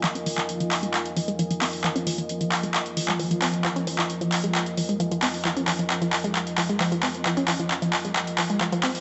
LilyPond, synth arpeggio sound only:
\new Staff \with { instrumentName = "Synth arpeggio sound" } { \clef bass \time 4/4 \key f \minor \tempo 4 = 133 f16 des'16 f16 f16 r16 f16 r16 aes16 r8 f16 aes16 f16 f16 c'16 r16 | f16 des'16 f16 f16 r16 f16 r16 aes16 r8 f16 aes16 f16 f16 c'16 r16 | f16 des'16 f16 f16 r16 f16 r16 aes16 r8 f16 aes16 f16 f16 c'16 r16 | f16 des'16 f16 f16 r16 f16 r16 aes16 r8 f16 aes16 f16 f16 c'16 r16 |
f16 des'16 f16 f16 r16 f16 r16 aes16 r8 f16 aes16 f16 f16 c'16 r16 | }